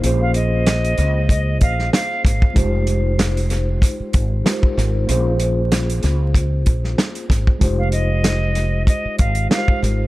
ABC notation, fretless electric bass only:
X:1
M:4/4
L:1/16
Q:"Swing 16ths" 1/4=95
K:Fm
V:1 name="Fretless electric bass" clef=bass
B,,,6 D,,4 B,,,2 z2 A,,, z | F,,,8 z2 A,,,2 z2 A,,,2 | B,,,6 D,,4 B,,,2 z2 A,,, z | F,,,8 z2 A,,,2 z2 A,,,2 |]